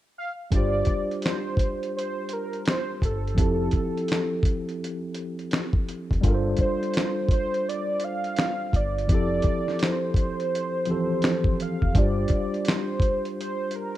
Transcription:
0.18 F5
0.51 G1 G3 D4 F4 D5, kick, closed hi-hat
0.56 G4 C5
0.85 kick, closed hi-hat
1.11 closed hi-hat
1.22 C5, snare, closed hi-hat
1.27 finger snap
1.57 kick, closed hi-hat
1.83 closed hi-hat
1.97 C5, closed hi-hat
2.29 closed hi-hat
2.33 A#4
2.53 closed hi-hat
2.65 C5, finger snap, snare, closed hi-hat
3.02 G1 A4, kick, closed hi-hat
3.27 closed hi-hat
3.34 F1 F3 C4 E4, kick, closed hi-hat
3.40 G4 A4
3.71 kick, closed hi-hat
3.97 closed hi-hat
4.08 snare, closed hi-hat
4.13 finger snap
4.43 kick, closed hi-hat
4.69 closed hi-hat
4.84 closed hi-hat
5.14 closed hi-hat
5.39 closed hi-hat
5.51 finger snap, snare, closed hi-hat
5.73 kick
5.89 closed hi-hat
6.11 F1, kick, closed hi-hat
6.21 G1 G3 D4 F4, kick, closed hi-hat
6.26 A4 A#4
6.34 C5
6.57 kick, closed hi-hat
6.61 C5
6.83 closed hi-hat
6.94 snare, closed hi-hat
6.98 finger snap
7.29 kick, closed hi-hat
7.33 C5
7.54 closed hi-hat
7.69 D5, closed hi-hat
8.00 closed hi-hat
8.04 F5
8.24 closed hi-hat
8.36 finger snap, snare, closed hi-hat
8.73 G1 D5, kick, closed hi-hat
8.98 closed hi-hat
9.08 F1 F3 C4 E4, kick, closed hi-hat
9.12 G4 A4 D5
9.42 kick, closed hi-hat
9.68 snare
9.79 snare, closed hi-hat
9.84 C5, finger snap
10.14 kick, closed hi-hat
10.40 closed hi-hat
10.55 closed hi-hat
10.85 E3 F3 C4, closed hi-hat
10.90 G4 A4
11.22 finger snap, snare, closed hi-hat
11.44 kick
11.60 F5, closed hi-hat
11.82 F1, kick
11.94 G1 G3 D4 F4, kick, closed hi-hat
11.98 G4 C5 D5
12.28 kick, closed hi-hat
12.54 closed hi-hat
12.65 snare, closed hi-hat
12.69 C5, finger snap
13.00 kick, closed hi-hat
13.25 closed hi-hat
13.41 C5, closed hi-hat
13.71 closed hi-hat
13.76 A#4

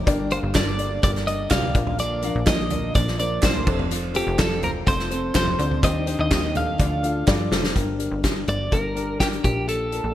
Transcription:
0.06 G1 G2 D3 G3 A#3 D4 G4 A#4 D5, kick, closed hi-hat
0.30 G3 A#3 D4 G4 A#4 C5 F5, closed hi-hat
0.43 G1
0.54 G1 G2 D3 G3 A#3 D4 G4 A#4 D5, kick, snare, clap, closed hi-hat
0.78 D4 G4 A#4 D5, closed hi-hat
1.02 G1 G3 A#3 D4 G4 A#4 D5, kick, closed hi-hat
1.15 snare
1.26 G3 A#3 D4 G4 A#4 D5 D#5, closed hi-hat
1.50 C2 G2 D3 G3 A#3 D4 G4 A#4 D5 F5, kick, snare, clap, closed hi-hat
1.63 floor tom
1.74 A#1 A#2 F3 A#3 D4 F4 A#4 D5, kick, closed hi-hat
1.87 floor tom
1.99 A#2 D3 F3 A#3 D4 A#4 D5, closed hi-hat
2.22 F3 A#3 D4 F4 A#4 F5, closed hi-hat
2.35 A#1
2.46 A#1 A#2 D3 F3 A#3 D4 F4 A#4 D5 D#5, kick, snare, clap, closed hi-hat
2.70 D4 F4 A#4 D5, closed hi-hat, floor tom
2.94 A#1 F3 A#3 D4 F4 A#4 D5, kick, closed hi-hat
3.07 snare
3.18 F3 A#3 D4 F4 A#4 C5 D5, closed hi-hat
3.42 A#1 A#2 D3 F3 A#3 D4 F4 A#4 C5 D5, kick, snare, clap, closed hi-hat
3.55 floor tom
3.66 F1 C4 F4 A4 C5, kick, crash
3.79 floor tom
3.91 F3 C4 F4 A4, closed hi-hat
4.14 C4 F4 G4 A4 C5, closed hi-hat
4.27 F1
4.38 F1 F3 C4 F4 A4 D5, kick, snare, clap, closed hi-hat
4.62 C4 F4 A4 A#4 C5, closed hi-hat, floor tom
4.86 F1 F3 C4 F4 A4 C5, kick, closed hi-hat
4.99 snare
5.10 C4 F4 A4 C5, closed hi-hat
5.34 F1 F3 C4 F4 A4 C5, kick, snare, clap, closed hi-hat
5.47 floor tom
5.58 D2 C4 F4 A4 D5, closed hi-hat
5.71 floor tom
5.82 D#2 D#3 G3 C4 D4 D#4 G4 C5 D#5, kick, closed hi-hat
6.06 C4 D4 D#4 G4 C5, closed hi-hat
6.19 D#2 D#5
6.30 D#2 D#3 G3 C4 D4 D#4 G4 C5, kick, snare, clap, closed hi-hat
6.55 D4 D#4 G4 A4 F5, closed hi-hat, floor tom
6.78 D2 D3 F3 D4 F4 A4 D5, kick, closed hi-hat
7.03 D4 F4 A4 F5, closed hi-hat
7.27 G2 D3 F3 D4 F4 A4 D5, kick, snare, clap
7.51 F1 D4 F4 A4 C5, snare
7.64 snare
7.75 G1 G2 D4 G4 A#4, kick, closed hi-hat
7.99 D4 G4 A#4, closed hi-hat
8.11 G1
8.23 D4 G4 A#4, kick, snare, closed hi-hat
8.47 G1 D4 G4 C5 D5, closed hi-hat
8.71 G1 D4 G4 A#4, kick, closed hi-hat
8.95 D4 G4 A#4, closed hi-hat
9.19 D4 G4 A#4, kick, snare, closed hi-hat
9.33 closed hi-hat
9.43 A#1 A#2 D4 F4 G4 A#4, kick, closed hi-hat
9.68 A4, closed hi-hat
9.92 D4 F4 A#4, closed hi-hat
10.04 A#1

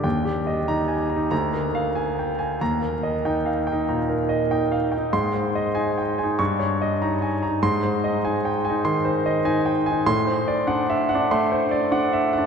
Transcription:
0.04 D#2 G5
0.25 G4
0.47 D#5
0.68 D#4 A#5
0.88 G#5
1.10 A#5
1.16 D#4
1.31 D2 A#5
1.54 A#4
1.75 F5
1.95 G#5
2.19 G5
2.39 G#5
2.61 D#2 A#5
2.81 A#4
3.03 D#5
3.25 D#4 G5
3.46 F5
3.67 G5
3.72 D#4
3.89 A#2 A#5
4.09 A#4
4.29 D#5
4.51 D#4 G5
4.72 F5
4.92 G5
4.98 D#4
5.13 G#2 C6
5.33 C5
5.55 D#5
5.75 D#4 G#5
5.98 G5
6.18 G#5
6.23 D#4
6.39 G2 C#6
6.59 C#5
6.82 D#5
7.02 D#4 A#5
7.22 G#5
7.43 A#5
7.48 D#4
7.62 G#2 C6
7.83 C5
8.04 D#5
8.25 D#4 G#5
8.45 G5
8.65 G#5
8.70 D#4
8.85 D#3 C6
9.05 C5
9.26 D#5
9.45 D#4 G#5
9.66 G5
9.86 G#5
9.91 D#4
10.06 A2 C6
10.27 C5
10.48 D5
10.67 D4 F#5
10.90 E5
11.09 F#5
11.15 D4
11.31 A3 C6
11.52 C5
11.71 D5
11.92 D4 F#5
12.13 E5
12.33 F#5
12.38 D4

